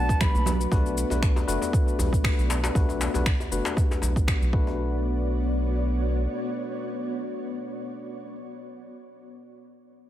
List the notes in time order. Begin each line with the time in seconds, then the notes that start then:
Already playing: B1 A3 B3 D4 F#4 B4 D5 A5
0.09 kick, high conga, shaker
0.20 B5, finger snap, kick, djembe tone, low conga, shaker
0.35 B1, high conga, shaker
0.46 djembe tone, low conga, shaker
0.61 shaker
0.71 B1 A3 D4 F#4 B4, kick, djembe tone, djembe bass, shaker
0.86 shaker
0.98 shaker
1.10 B1 A3 D4 F#4 B4, djembe tone, shaker
1.23 finger snap, kick, shaker
1.36 djembe tone, shaker
1.48 F#1 A3 D4 F#4 B4, shaker
1.62 djembe tone, shaker
1.73 kick, shaker
1.88 shaker
1.99 B1, djembe tone, djembe bass, shaker
2.13 kick, shaker
2.24 finger snap, kick, djembe tone, shaker
2.38 B1, shaker
2.50 djembe slap, djembe tone, shaker
2.64 djembe slap, shaker
2.75 B1 A3 D4 F#4 B4, kick, djembe bass, shaker
2.89 djembe tone, shaker
3.01 djembe slap, shaker
3.14 B1 A3 D4 F#4 B4, djembe tone, shaker
3.26 finger snap, kick, shaker
3.40 djembe tone, shaker
3.52 F#1 A3 D4 F#4 B4, shaker
3.65 djembe slap, shaker
3.77 kick, djembe tone, shaker
3.91 djembe slap, djembe bass, shaker
4.02 B1, djembe tone, shaker
4.16 kick, shaker
4.28 finger snap, kick, djembe tone, shaker
4.42 B1, shaker
4.53 A3 B3 D4 F#4 B4 C#5 D5, kick
4.67 djembe tone